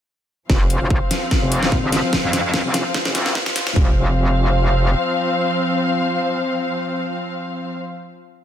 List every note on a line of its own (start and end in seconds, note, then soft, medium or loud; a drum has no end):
0.50 0.79 F1 medium
0.50 3.73 F3 medium
0.50 3.73 C4 medium
0.50 3.73 C5 medium
0.50 3.73 F5 medium
0.50 kick medium
0.50 snare soft
0.70 closed hi-hat medium
0.81 1.00 F1 loud
0.90 kick medium
1.11 snare medium
1.11 closed hi-hat medium
1.31 kick loud
1.31 snare medium
1.42 1.81 F1 loud
1.52 closed hi-hat medium
1.63 snare medium
1.72 kick medium
1.83 2.02 G1 medium
1.92 snare medium
1.92 open hi-hat medium
2.13 kick loud
2.13 snare medium
2.24 2.63 F2 medium
2.33 snare medium
2.33 closed hi-hat medium
2.54 kick loud
2.54 snare medium
2.65 2.83 F1 medium
2.74 snare medium
2.74 closed hi-hat medium
2.94 kick loud
2.94 snare medium
3.05 3.44 F1 loud
3.05 snare medium
3.15 snare medium
3.15 closed hi-hat medium
3.26 snare medium
3.35 kick loud
3.35 snare loud
3.46 snare medium
3.56 snare loud
3.56 open hi-hat medium
3.67 snare medium
3.76 4.95 F1 loud
3.76 7.79 F3 medium
3.76 7.79 C4 medium
3.76 7.79 C5 medium
3.76 7.79 F5 medium
3.76 kick loud
3.76 floor tom loud